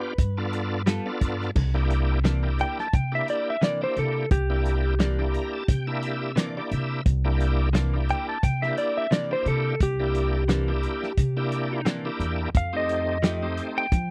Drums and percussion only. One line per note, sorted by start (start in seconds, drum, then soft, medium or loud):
0.18 kick medium
0.18 closed hi-hat medium
0.53 closed hi-hat medium
0.87 snare loud
0.87 closed hi-hat medium
1.21 kick medium
1.21 closed hi-hat medium
1.41 snare soft
1.56 kick medium
1.56 crash medium
1.90 closed hi-hat medium
2.25 snare loud
2.25 closed hi-hat medium
2.59 closed hi-hat medium
2.79 snare soft
2.93 kick loud
2.93 closed hi-hat medium
3.28 closed hi-hat medium
3.62 snare loud
3.62 closed hi-hat medium
3.97 closed hi-hat medium
4.31 kick loud
4.31 closed hi-hat medium
4.66 closed hi-hat medium
5.00 snare loud
5.00 closed hi-hat medium
5.34 closed hi-hat medium
5.68 kick loud
5.68 closed hi-hat medium
6.03 closed hi-hat medium
6.37 snare loud
6.37 closed hi-hat medium
6.72 closed hi-hat medium
7.06 kick loud
7.06 closed hi-hat medium
7.40 closed hi-hat medium
7.75 snare loud
7.75 closed hi-hat medium
8.09 closed hi-hat medium
8.43 kick loud
8.43 closed hi-hat medium
8.63 snare soft
8.78 closed hi-hat medium
9.12 snare loud
9.12 closed hi-hat medium
9.46 closed hi-hat medium
9.80 kick loud
9.80 closed hi-hat medium
10.15 closed hi-hat medium
10.49 snare loud
10.49 closed hi-hat medium
10.83 closed hi-hat medium
11.03 snare soft
11.17 kick loud
11.17 closed hi-hat medium
11.52 closed hi-hat medium
11.86 snare loud
11.86 closed hi-hat medium
12.20 closed hi-hat medium
12.55 kick loud
12.55 closed hi-hat medium
12.89 closed hi-hat medium
13.23 snare loud
13.23 closed hi-hat medium
13.57 closed hi-hat medium
13.92 kick loud
13.92 closed hi-hat medium